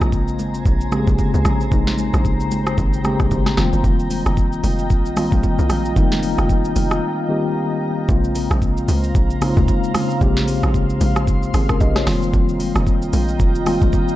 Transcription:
Already playing: tine electric piano C#3 G#3 A#3 C4 F4, ambient pad C#3 C5 G#5 A#5
0.01 log drum bass A#1, cross-stick, shaker
0.12 kick, shaker
0.28 shaker
0.39 log drum bass G#1, high conga, shaker
0.54 shaker
0.66 log drum bass A#1, kick, shaker
0.81 shaker
0.91 tine electric piano C#3 G#3 A#3 C4 G4, cross-stick, high conga, shaker
0.99 tine electric piano G#4
1.07 log drum bass A#1, kick, high conga, shaker
1.18 kick, low conga, shaker
1.34 log drum bass C#2, shaker
1.45 log drum bass A#1, cross-stick, high conga, low conga, shaker
1.61 shaker
1.71 log drum bass A#1, tine electric piano C#3 G#3 A#3 C4 D#4, ambient pad G5, kick, low conga, shaker
1.87 snare, shaker
1.98 high conga, shaker
2.14 log drum bass A#1, cross-stick, shaker
2.25 kick, shaker
2.40 shaker
2.51 log drum bass G#1, high conga, shaker
2.67 cross-stick, shaker
2.78 log drum bass G#1, kick, shaker
2.93 shaker
3.04 tine electric piano C#3 G#3 A#3 C4 G4, cross-stick, high conga, shaker
3.20 log drum bass A#1, kick, cross-stick, high conga, shaker
3.31 log drum bass G#1, kick, low conga, shaker
3.46 cross-stick, snare, shaker
3.57 log drum bass F1, tine electric piano D#3 G3 A#3 C4 F4, ambient pad F4 D#5 G5, cross-stick, snare, high conga, low conga, shaker
3.73 log drum bass F1, shaker
3.84 log drum bass F1, kick, low conga, shaker
4.00 shaker
4.10 open hi-hat, high conga, shaker
4.26 log drum bass F1, cross-stick, shaker
4.37 kick, shaker
4.53 shaker
4.64 log drum bass F1, open hi-hat, high conga, shaker
4.79 shaker
4.90 log drum bass A#1, kick, shaker
5.06 shaker
5.16 tine electric piano D#3 G3 A#3 C4 F4, cross-stick, open hi-hat, high conga, shaker
5.32 log drum bass A#1, kick, high conga, shaker
5.43 kick, low conga, shaker
5.59 log drum bass C2, shaker
5.70 log drum bass A#1, cross-stick, open hi-hat, high conga, low conga, shaker
5.85 shaker
5.96 log drum bass F1, tine electric piano D#3 G3 A3 C4 D#4, kick, low conga, shaker
6.03 tine electric piano A#3
6.12 snare, shaker
6.22 open hi-hat, high conga, shaker
6.38 log drum bass F1, cross-stick, shaker
6.49 kick, shaker
6.65 shaker
6.76 log drum bass F1, open hi-hat, high conga, shaker
6.91 cross-stick, shaker
7.29 tine electric piano D#3 G3 A#3 C4 G4
8.08 log drum bass A#1, tine electric piano C#3 G#3 A#3 C4 F4, ambient pad C#3 C5 F5 A#5, kick, low conga, shaker
8.24 shaker
8.35 open hi-hat, high conga, shaker
8.51 log drum bass A#1, cross-stick, shaker
8.62 kick, shaker
8.77 shaker
8.88 log drum bass C#2, open hi-hat, high conga, shaker
9.04 shaker
9.15 log drum bass A#1, kick, shaker
9.30 shaker
9.41 tine electric piano C#3 G#3 A#3 C4 D#4, cross-stick, open hi-hat, high conga, shaker
9.49 tine electric piano F4
9.57 log drum bass C#2, kick, shaker
9.68 kick, low conga, shaker
9.84 shaker
9.94 cross-stick, open hi-hat, high conga, low conga, shaker
10.10 shaker
10.21 log drum bass A#1, tine electric piano C#3 G#3 A#3 C4 G4, ambient pad C6, kick, low conga, shaker
10.37 snare, shaker
10.47 open hi-hat, high conga, shaker
10.63 log drum bass A#1, cross-stick, shaker
10.74 kick, shaker
10.90 shaker
11.01 log drum bass A#1, open hi-hat, high conga, shaker
11.16 cross-stick, shaker
11.27 kick, shaker
11.43 shaker
11.54 log drum bass G#1, tine electric piano C4 G#4, cross-stick, open hi-hat, high conga, shaker
11.69 tine electric piano C#4 A#4, kick, cross-stick, shaker
11.80 log drum bass A#1, tine electric piano G4 D#5, kick, low conga, shaker
11.96 tine electric piano F4 C#5, cross-stick, snare, shaker
12.06 log drum bass F1, tine electric piano D#3 G3 A#3 C4 F4, ambient pad F4 D#5 G5 A#5, cross-stick, snare, open hi-hat, high conga, low conga, shaker
12.22 shaker
12.34 log drum bass F1, kick, low conga, shaker
12.49 shaker
12.60 open hi-hat, high conga, shaker
12.75 log drum bass F1, cross-stick, shaker
12.87 kick, shaker
13.02 shaker
13.13 log drum bass A#1, open hi-hat, high conga, shaker
13.28 shaker
13.40 log drum bass F1, kick, shaker
13.55 shaker
13.66 tine electric piano D#3 G3 A#3 C4 F4, cross-stick, open hi-hat, high conga, shaker
13.82 log drum bass A#1, kick, shaker
13.93 kick, low conga, shaker
14.08 shaker

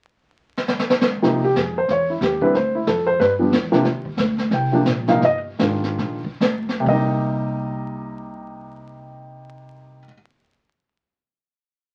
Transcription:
0.57 snare
0.68 snare
0.79 snare
0.90 snare
1.01 snare
1.22 upright bass C2, grand piano C3 F3 A#3 D#4, brush sweep, kick, snare
1.44 grand piano G4
1.56 upright bass F2, grand piano G#4, kick, snare, hi-hat pedal
1.78 grand piano C5
1.88 upright bass E2, grand piano C#5, brush sweep, kick, snare
2.10 grand piano E4
2.21 upright bass D#2, grand piano G4, kick, snare, hi-hat pedal
2.41 grand piano D3 G3 C4 E4 B4, kick
2.54 upright bass D2, grand piano C5, brush sweep, kick, snare
2.75 grand piano E4
2.87 upright bass F2, grand piano A4, kick, snare, hi-hat pedal
3.07 grand piano C5
3.19 upright bass G2, grand piano B4, brush sweep, kick, snare
3.39 grand piano F3 G3 B3 D4
3.52 upright bass E2, kick, snare, hi-hat pedal
3.72 grand piano C3 F3 A#3 D4, snare
3.85 upright bass D#2, brush sweep, kick, snare
4.05 kick
4.17 upright bass D2, kick, snare, hi-hat pedal
4.38 snare
4.51 upright bass C2, grand piano G5, brush sweep, kick, snare
4.72 grand piano C3 F3 A#3 D4
4.85 upright bass A#1, kick, snare, hi-hat pedal
5.07 grand piano C3 F3 A#3 D#4 F5, snare
5.21 upright bass G1, grand piano D#5, brush sweep, kick, snare
5.58 upright bass G#1, grand piano D#3 G#3 D4 F4, kick, snare, hi-hat pedal
5.83 snare
5.98 upright bass A#1, brush sweep, kick, snare
6.24 muted upright bass stroke, kick
6.40 upright bass D2, kick, snare, hi-hat pedal
6.69 snare
6.80 grand piano C3
6.84 upright bass C2, grand piano G3, kick, open hi-hat
6.88 grand piano A#3 D#4 D#5

